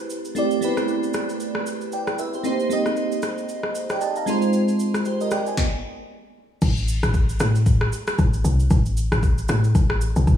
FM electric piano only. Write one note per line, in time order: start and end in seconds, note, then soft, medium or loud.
0.00 0.35 A3 medium
0.00 0.36 C4 medium
0.00 0.37 E4 medium
0.00 0.38 G4 medium
0.00 0.64 B4 medium
0.00 2.34 C5 loud
0.35 0.57 A3 medium
0.35 0.58 C4 medium
0.35 0.58 E4 medium
0.35 0.58 G4 medium
0.35 0.59 D5 loud
0.61 1.46 A3 medium
0.61 0.69 B3 medium
0.61 1.47 E4 medium
0.61 1.47 G4 medium
0.61 1.48 B4 loud
0.68 1.49 C4 medium
1.93 2.18 D5 medium
1.93 2.18 G5 medium
2.19 2.34 B4 medium
2.19 2.33 E5 medium
2.34 2.45 G4 medium
2.34 2.46 C5 medium
2.44 2.66 A#3 medium
2.44 2.66 C4 medium
2.44 2.67 D#4 medium
2.44 2.67 G4 medium
2.44 2.68 C5 medium
2.70 3.54 A#3 medium
2.70 3.55 C4 medium
2.70 3.55 D#4 medium
2.70 3.56 G4 medium
2.70 3.50 D#5 medium
3.91 4.01 D5 medium
3.91 4.01 G5 medium
4.02 4.16 D#5 medium
4.02 4.16 A5 medium
4.17 4.42 F5 medium
4.17 4.41 A#5 medium
4.26 4.70 G#3 medium
4.26 4.71 C4 medium
4.26 4.71 D#4 medium
4.26 4.71 F4 medium
4.26 4.72 C5 loud
5.06 5.21 G4 medium
5.06 5.20 C5 medium
5.21 5.32 A#4 medium
5.21 5.31 D#5 medium
5.32 5.47 D5 medium
5.32 5.46 G5 medium
5.47 5.72 D#5 soft
5.47 5.72 G#5 medium